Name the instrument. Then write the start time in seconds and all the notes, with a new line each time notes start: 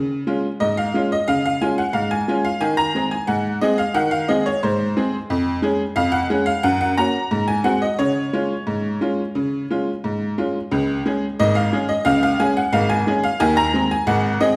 honky-tonk piano
Already playing: C#3
0.27 G#3 C#4 F4
0.60 G#2 D#5
0.77 F5
0.94 G#3 C#4 F4
1.12 D#5
1.28 C#3 F5
1.46 F5
1.61 G#3 C#4 F4 G#5
1.78 F#5
1.93 G#2 F5
2.11 G#5
2.28 G#3 C#4 F4
2.45 F5
2.61 D#3 G#5
2.77 A#5
2.95 G#3 C4 G#4
3.11 G#5
3.27 G#2 F#5
3.61 G#3 C4 G#4 D#5
3.78 F5
3.94 D#3 F#5
4.11 F5
4.28 G#3 C4 G#4 D#5
4.46 C#5
4.63 G#2 C5
4.97 G#3 C4 G#4
5.30 F2
5.62 G#3 C#4 G#4
5.96 F2 F5
6.12 F#5
6.30 G#3 C#4 G#4
6.46 F5
6.63 F#2 F#5
6.81 F#5
6.98 A#3 C#4 F#4 A#5
7.31 G#2
7.48 G#5
7.64 G#3 C4 F#4 F#5
7.82 D#5
7.99 C#3 C#5
8.33 G#3 C#4 F4
8.67 G#2
9.01 G#3 C#4 F4
9.35 C#3
9.71 G#3 C#4 F4
10.04 G#2
10.38 G#3 C#4 F4
10.71 C#2 C#3
11.06 G#3 C#4 G#4
11.39 G#1 G#2 D#5
11.55 F5
11.73 G#3 C#4 G#4
11.89 D#5
12.05 C#2 C#3 F5
12.23 F5
12.40 G#3 C#4 G#4 G#5
12.57 F#5
12.73 G#1 G#2 F5
12.89 G#5
13.07 G#3 C#4 G#4
13.23 F5
13.40 D#2 D#3 G#5
13.57 A#5
13.74 G#3 C4 G#4
13.91 G#5
14.07 G#1 G#2 F#5
14.41 G#3 C4 G#4 D#5